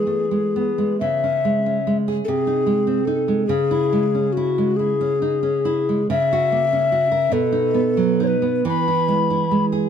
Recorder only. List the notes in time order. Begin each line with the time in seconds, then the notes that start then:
Already playing: G#4
1.00 E5
2.25 A4
2.29 G#4
3.05 A4
3.47 G#4
4.33 F#4
4.77 G#4
6.11 E5
7.33 A4
8.24 B4 C#5
8.68 B5